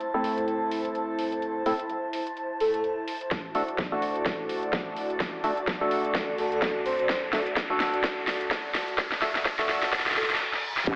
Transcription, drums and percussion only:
0.01 closed hi-hat
0.24 open hi-hat
0.38 closed hi-hat
0.48 closed hi-hat
0.71 open hi-hat
0.85 closed hi-hat
0.95 closed hi-hat
1.19 open hi-hat
1.32 closed hi-hat
1.42 closed hi-hat
1.66 open hi-hat
1.79 closed hi-hat
1.90 closed hi-hat
2.13 open hi-hat
2.27 closed hi-hat
2.37 closed hi-hat
2.60 open hi-hat
2.74 closed hi-hat
2.84 closed hi-hat
3.08 open hi-hat
3.21 closed hi-hat
3.31 kick, snare, closed hi-hat
3.55 open hi-hat
3.68 closed hi-hat
3.78 kick, snare, closed hi-hat
4.02 open hi-hat
4.16 closed hi-hat
4.26 kick, snare, closed hi-hat
4.49 open hi-hat
4.63 closed hi-hat
4.73 kick, snare, closed hi-hat
4.97 open hi-hat
5.10 closed hi-hat
5.20 kick, snare, closed hi-hat
5.44 open hi-hat
5.57 closed hi-hat
5.67 kick, snare, closed hi-hat
5.91 open hi-hat
6.05 closed hi-hat
6.15 kick, snare, closed hi-hat
6.38 open hi-hat
6.52 closed hi-hat
6.62 kick, snare, closed hi-hat
6.86 open hi-hat
6.99 closed hi-hat
7.09 kick, snare, closed hi-hat
7.33 snare, open hi-hat
7.46 closed hi-hat
7.56 kick, snare, closed hi-hat
7.80 snare, open hi-hat
7.94 closed hi-hat
8.04 kick, snare, closed hi-hat
8.27 snare, open hi-hat
8.41 closed hi-hat
8.51 kick, snare, closed hi-hat
8.75 snare, open hi-hat
8.88 closed hi-hat
8.98 kick, snare, closed hi-hat
9.12 snare
9.22 snare, open hi-hat
9.35 snare, closed hi-hat
9.45 kick, snare, closed hi-hat
9.59 snare, open hi-hat
9.69 snare, open hi-hat
9.83 snare, closed hi-hat
9.93 kick, snare, closed hi-hat
9.99 snare
10.06 snare
10.11 snare
10.16 snare, open hi-hat
10.23 snare
10.30 snare, closed hi-hat
10.35 snare
10.40 snare
10.54 snare
10.77 snare
10.87 kick, closed hi-hat, crash, shaker

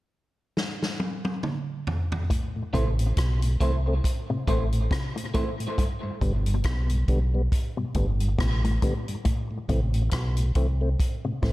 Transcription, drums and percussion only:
0.57 snare
0.82 snare
1.00 high tom
1.25 high tom
1.43 mid tom
1.87 floor tom
2.12 floor tom
2.30 kick, closed hi-hat
2.74 kick, closed hi-hat
2.99 closed hi-hat
3.17 kick, cross-stick, closed hi-hat
3.42 closed hi-hat
3.61 kick, closed hi-hat
4.04 kick, closed hi-hat
4.48 kick, closed hi-hat
4.72 closed hi-hat
4.91 kick, cross-stick, closed hi-hat
5.17 closed hi-hat
5.34 kick, closed hi-hat
5.60 closed hi-hat
5.78 kick, closed hi-hat
6.21 kick, closed hi-hat
6.46 closed hi-hat
6.64 kick, cross-stick, closed hi-hat
6.89 closed hi-hat
7.08 kick, closed hi-hat
7.52 kick, closed hi-hat
7.94 kick, closed hi-hat
8.20 closed hi-hat
8.39 kick, cross-stick, closed hi-hat
8.64 closed hi-hat
8.82 kick, closed hi-hat
9.08 closed hi-hat
9.25 kick, closed hi-hat
9.69 kick, closed hi-hat
9.94 closed hi-hat
10.11 kick, cross-stick, closed hi-hat
10.37 closed hi-hat
10.55 kick, closed hi-hat
11.00 kick, closed hi-hat
11.43 kick, cross-stick, open hi-hat

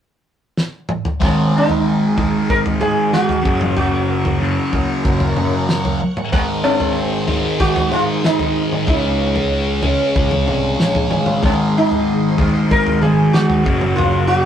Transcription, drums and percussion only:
0.58 snare
0.89 mid tom
1.05 floor tom
1.22 kick, floor tom
1.69 floor tom
2.18 kick, floor tom
2.50 kick
2.66 floor tom
2.81 mid tom
3.13 snare
3.29 floor tom
3.45 kick
3.61 mid tom
3.77 floor tom
4.25 floor tom
4.73 kick, floor tom
5.05 kick
5.20 floor tom
5.37 mid tom
5.69 snare
5.85 floor tom
6.17 mid tom
6.33 kick, floor tom
6.80 floor tom
7.28 floor tom
7.60 kick
7.76 floor tom
7.92 mid tom
8.24 snare
8.39 floor tom
8.72 mid tom
8.87 kick, floor tom
9.36 floor tom
9.83 floor tom
10.16 kick
10.31 floor tom
10.48 mid tom
10.80 snare
10.95 floor tom
11.11 mid tom
11.26 mid tom
11.43 kick, floor tom
11.91 floor tom
12.38 kick, floor tom
12.71 kick
12.87 floor tom
13.03 mid tom
13.34 snare
13.50 floor tom
13.66 kick
13.81 mid tom
13.98 floor tom

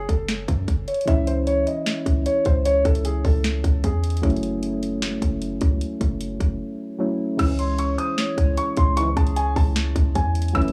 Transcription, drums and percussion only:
0.09 kick, closed hi-hat
0.28 snare, closed hi-hat
0.48 kick, closed hi-hat
0.68 kick, closed hi-hat
0.88 closed hi-hat
0.94 closed hi-hat
1.01 closed hi-hat
1.08 kick, closed hi-hat
1.27 closed hi-hat
1.47 closed hi-hat
1.67 closed hi-hat
1.86 snare, closed hi-hat
2.06 kick, closed hi-hat
2.26 closed hi-hat
2.45 kick, closed hi-hat
2.65 closed hi-hat
2.85 kick, closed hi-hat
2.95 closed hi-hat
3.05 closed hi-hat
3.25 kick, open hi-hat
3.44 snare, closed hi-hat
3.64 kick, closed hi-hat
3.84 kick, closed hi-hat
4.04 closed hi-hat
4.10 closed hi-hat
4.17 closed hi-hat
4.23 kick, closed hi-hat
4.30 closed hi-hat
4.36 closed hi-hat
4.43 closed hi-hat
4.63 closed hi-hat
4.83 closed hi-hat
5.02 snare, closed hi-hat
5.22 kick, closed hi-hat
5.42 closed hi-hat
5.61 kick, closed hi-hat
5.81 closed hi-hat
6.01 kick, closed hi-hat
6.21 closed hi-hat
6.40 kick, closed hi-hat
7.39 kick, closed hi-hat, crash
7.59 closed hi-hat
7.79 closed hi-hat
7.98 closed hi-hat
8.18 snare, closed hi-hat
8.38 kick, closed hi-hat
8.57 closed hi-hat
8.77 kick, closed hi-hat
8.97 closed hi-hat
9.17 kick, closed hi-hat
9.27 closed hi-hat
9.36 closed hi-hat
9.56 kick, open hi-hat
9.76 snare, closed hi-hat
9.96 kick, closed hi-hat
10.15 kick, closed hi-hat
10.35 closed hi-hat
10.42 closed hi-hat
10.48 closed hi-hat
10.55 kick, closed hi-hat
10.62 closed hi-hat
10.68 closed hi-hat

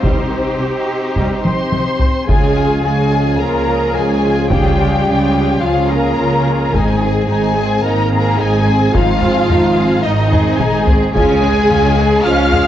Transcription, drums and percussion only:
0.03 taiko
1.16 taiko
1.45 taiko high
1.72 taiko high
2.00 taiko low
2.29 taiko
4.51 taiko
6.74 taiko
8.95 taiko
9.22 taiko low-mid
9.50 taiko low-mid
10.32 taiko low-mid
10.60 taiko mid
10.87 taiko low
11.15 taiko
11.43 taiko low-mid
11.70 taiko low-mid
12.53 taiko low-mid

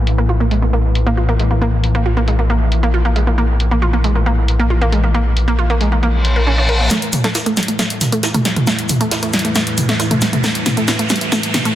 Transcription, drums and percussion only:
0.07 open hi-hat
0.51 open hi-hat
0.95 open hi-hat
1.39 open hi-hat
1.84 open hi-hat
2.28 open hi-hat
2.72 open hi-hat
3.16 open hi-hat
3.60 open hi-hat
4.04 open hi-hat
4.48 open hi-hat
4.92 open hi-hat
5.37 open hi-hat
5.81 open hi-hat
6.25 open hi-hat
6.69 open hi-hat
6.90 snare, closed hi-hat, shaker
7.02 closed hi-hat
7.13 mid tom, open hi-hat, shaker
7.24 snare, closed hi-hat
7.35 snare, closed hi-hat, shaker
7.46 closed hi-hat
7.57 snare, open hi-hat, shaker
7.63 closed hi-hat
7.68 closed hi-hat
7.79 snare, closed hi-hat, shaker
7.90 closed hi-hat
8.01 snare, mid tom, open hi-hat, shaker
8.12 closed hi-hat
8.23 snare, closed hi-hat, shaker
8.34 closed hi-hat, mid tom
8.45 snare, open hi-hat, shaker
8.56 closed hi-hat, mid tom
8.67 snare, closed hi-hat, shaker
8.79 closed hi-hat
8.89 mid tom, open hi-hat, shaker
9.01 closed hi-hat
9.11 snare, closed hi-hat, open hi-hat
9.23 closed hi-hat
9.33 snare, open hi-hat, shaker
9.39 closed hi-hat
9.45 closed hi-hat
9.55 snare, closed hi-hat, shaker
9.67 closed hi-hat
9.77 mid tom, open hi-hat, shaker
9.89 snare, closed hi-hat
9.99 snare, closed hi-hat, shaker
10.11 closed hi-hat, mid tom
10.21 snare, open hi-hat, shaker
10.33 closed hi-hat, mid tom
10.44 snare, closed hi-hat, shaker
10.55 closed hi-hat
10.66 snare, mid tom, open hi-hat, shaker
10.77 closed hi-hat
10.88 snare, closed hi-hat, shaker
10.99 closed hi-hat
11.09 snare, open hi-hat, shaker
11.16 closed hi-hat
11.21 closed hi-hat
11.32 snare, closed hi-hat, shaker
11.43 closed hi-hat
11.54 snare, mid tom, open hi-hat, shaker
11.65 closed hi-hat

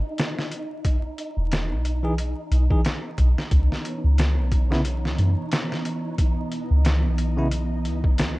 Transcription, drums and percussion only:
0.18 snare, closed hi-hat
0.38 snare
0.51 closed hi-hat
0.85 kick, closed hi-hat
1.18 closed hi-hat
1.52 snare, closed hi-hat
1.85 closed hi-hat
2.18 closed hi-hat
2.52 closed hi-hat
2.70 kick
2.85 snare, closed hi-hat
3.18 kick, closed hi-hat
3.38 snare
3.51 kick, closed hi-hat
3.72 snare
3.85 closed hi-hat
4.18 snare, closed hi-hat
4.52 kick, closed hi-hat
4.72 snare
4.85 closed hi-hat
5.05 snare
5.19 closed hi-hat
5.52 snare, closed hi-hat
5.72 snare
5.85 closed hi-hat
6.18 kick, closed hi-hat
6.52 closed hi-hat
6.85 snare, closed hi-hat
7.18 closed hi-hat
7.51 closed hi-hat
7.85 closed hi-hat
8.04 kick
8.18 snare, closed hi-hat

